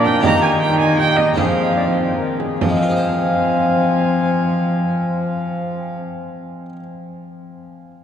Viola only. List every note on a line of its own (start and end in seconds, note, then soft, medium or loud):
0.05 0.23 G5 loud
0.24 0.42 A#5 loud
0.42 0.50 G#5 loud
0.61 0.79 G5 loud
0.79 0.97 G#5 loud
0.98 1.19 G5 loud
1.17 1.39 D#5 medium
1.38 2.19 F5 medium
2.62 5.96 F5 medium